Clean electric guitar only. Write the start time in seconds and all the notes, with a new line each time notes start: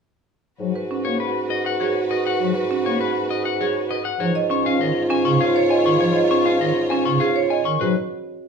1.05 C#5
1.20 B4
1.50 D#5
1.66 F#5
1.81 C#5
2.11 D#5
2.27 F#5
2.86 C#5
3.01 B4
3.31 D#5
3.45 F#5
3.61 C#5
3.91 D#5
4.05 F#5
4.20 C#5
4.51 C#6
4.66 F5
4.81 D#5
5.10 G#5
5.25 C#6
5.41 F5
5.70 G#5
5.86 C#6
6.01 C#5
6.31 C#6
6.46 F5
6.61 D#5
6.90 G#5
7.05 C#6
7.20 F5
7.50 G#5
7.65 C#6
7.81 B4